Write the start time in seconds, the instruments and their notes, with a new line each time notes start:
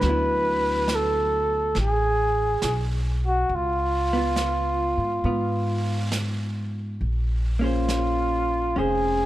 Already playing: flugelhorn B4
0.00 upright bass D2, hollow-body jazz guitar D3 F#3, brush sweep, snare
0.06 hollow-body jazz guitar B3 E4
0.88 snare, hi-hat pedal
0.95 flugelhorn A4
1.75 upright bass A1, brush sweep, snare
1.81 flugelhorn G#4
2.62 upright bass B1, snare, hi-hat pedal
3.26 flugelhorn F#4
3.49 upright bass C#2, brush sweep
3.55 flugelhorn F4
4.13 hollow-body jazz guitar B3
4.18 hollow-body jazz guitar F4
4.36 snare, hi-hat pedal
4.97 upright bass G#2
5.23 upright bass G#2, hollow-body jazz guitar B3 F4, brush sweep
6.12 snare, hi-hat pedal
7.00 upright bass A#1, brush sweep
7.59 hollow-body jazz guitar A#3 C#4 G#4
7.63 flugelhorn F4, hollow-body jazz guitar C5
7.88 snare, hi-hat pedal
8.76 upright bass F1, hollow-body jazz guitar C#4 G#4 C5, flugelhorn G#4, brush sweep